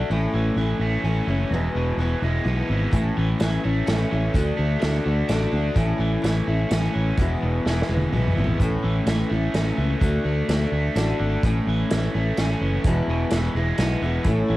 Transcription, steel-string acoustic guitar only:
Already playing: D4 F#4
0.10 A2 E3 A3 C#4 E4
0.58 E3 A3 C#4 E4
1.05 E3 A3 C#4 E4
1.28 A3 C#4 E4
1.52 E2 B2 E3 G#3 B3 E4
1.99 E3 G#3 B3 E4
2.23 E3 G#3 B3 E4
2.45 E3 G#3 B3 E4
2.91 A2 E3 A3 C#4 E4
3.39 E3 A3 C#4 E4
3.64 A3 C#4 E4
3.86 E3 A3 C#4 E4
4.11 A3 C#4 E4
4.34 D3 A3 D4 F#4
4.79 D3 A3 D4 F#4
5.06 A3 D4 F#4
5.29 D3 A3 D4 F#4
5.52 A3 D4 F#4
5.74 A2 E3 A3 C#4 E4
6.22 E3 A3 C#4 E4
6.48 A3 C#4 E4
6.71 E3 A3 C#4 E4
7.19 E2 B2 E3 G#3 B3 E4
7.67 E3 G#3 B3 E4
7.90 E3 G#3 B3 E4
8.13 E3 G#3 B3 E4
8.37 E3 G#3 B3 E4
8.62 A2 E3 A3 C#4 E4
9.09 E3 A3 C#4 E4
9.32 C#4 E4
9.36 A3
9.54 E3 A3 C#4 E4
9.77 A3 C#4 E4
10.01 D3 A3 D4 F#4
10.49 D3 A3 D4 F#4
10.95 D3 A3 D4 F#4
11.44 A2 E3 A3 C#4 E4
11.92 E3 A3 C#4 E4
12.14 A3 C#4 E4
12.38 E3 A3 C#4 E4
12.86 E2 B2 E3 G#3 B3 E4
13.33 E3 G#3 B3 E4
13.57 E3 G#3 B3 E4
13.79 E3 G#3 B3 E4
14.02 E3 G#3 B3 E4
14.26 A2 E3 A3 C#4 E4

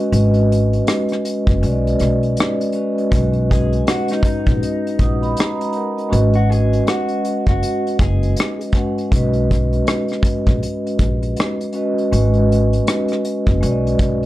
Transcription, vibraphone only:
Already playing: G#3 C#4 F#4 B4 D#5
0.12 G#3 C#4 F#4 B4 D#5
1.61 G#3 C#4 F#4 B4
1.65 D5
1.72 D#5
2.73 G#3 C#4 F#4 B4
2.77 D#5
3.11 G#3 C#4 F#4 B4 D#5
5.00 F#5 D#6
5.22 D#5 B5
5.38 A#5
5.76 A#4 F#5
5.97 F#4 D#5
6.09 G#3 C#4 F#4 B4 D#5
8.74 G#3 C#4 F#4 B4 F#5
9.12 G#3 C#4 F#4 B4 D#5
11.73 G#3 C#4 F#4 B4
11.77 D#5
12.12 G#3 C#4 F#4 B4 D#5
13.61 G#3 C#4 F#4 B4 D5
13.71 D#5

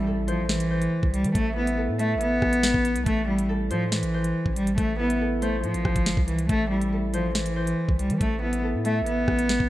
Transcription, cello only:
0.28 F3
0.49 E3
1.13 G3
1.35 A3
1.56 B3
1.99 A3
2.21 B3
3.06 A3
3.28 G3
3.70 F3
3.92 E3
4.56 G3
4.77 A3
4.99 B3
5.42 A3
5.63 F3
6.27 E3
6.49 A3
6.70 G3
7.14 F3
7.35 E3
7.99 G3
8.20 A3
8.42 B3
8.85 A3
9.07 B3

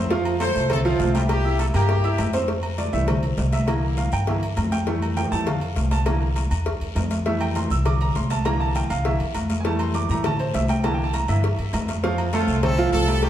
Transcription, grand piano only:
0.10 F3 F4 F5
0.40 A3 A4 A5
0.70 C4 C5 C6
0.85 F3 F4 F5
1.15 G3 G4 G5
1.45 E4 E5 E6
1.74 A#3 A#4 A#5
2.04 E4 E5 E6
2.34 C4 C5 C6
2.78 D5
2.92 E3 G3 A3 E5
3.08 C5
3.53 E5
3.67 D3 E3 A#3
3.97 F5
4.13 G5
4.27 D3 E3 A#3 E5
4.72 G5
4.86 E3 G3 A3
5.17 G5
5.32 E3 G3 A3 A5
5.46 F5
5.91 A5
6.06 D3 E3 A#3
7.26 E3 G3 A3 E5
7.41 G5
7.56 C6
7.71 E6
7.86 D6
8.01 A#5
8.16 C6
8.30 A5
8.45 D3 E3 A#3 A#5
8.60 A5
8.76 G5
8.90 F5
9.05 D3 E3 A#3 E5
9.60 E3 G#5
9.65 G3 A3 A5
9.80 C6
9.95 D6
10.10 E3 G3 A3 A#5
10.26 A5
10.40 C5
10.55 E5
10.70 G5
10.84 D3 E3 A#3 A5
10.94 G5
11.04 A5
11.14 A#5
11.29 D3 E3 A#3 E5
12.03 F3 F4 F5
12.33 A3 A4 A5
12.63 C4 C5 C6
12.78 F3 F4 F5
13.08 G3 G4 G5

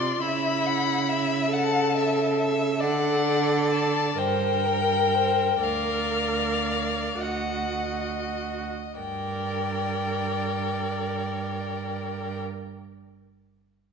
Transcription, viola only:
Already playing: F4
0.21 E4
1.51 A4
2.82 A4
4.18 A#4
5.62 A#4
7.21 F#4
8.98 A#4

